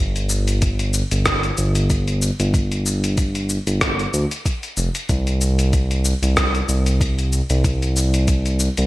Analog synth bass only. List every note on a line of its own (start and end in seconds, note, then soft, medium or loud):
0.00 1.03 G1 loud
1.12 1.51 G1 medium
1.58 2.31 G1 loud
2.40 3.58 G1 medium
3.67 4.06 G1 medium
4.14 4.26 D2 medium
4.77 4.89 F1 medium
5.10 6.14 C2 loud
6.23 6.62 C2 medium
6.69 7.41 C2 loud
7.50 8.69 C2 medium
8.78 8.87 C2 medium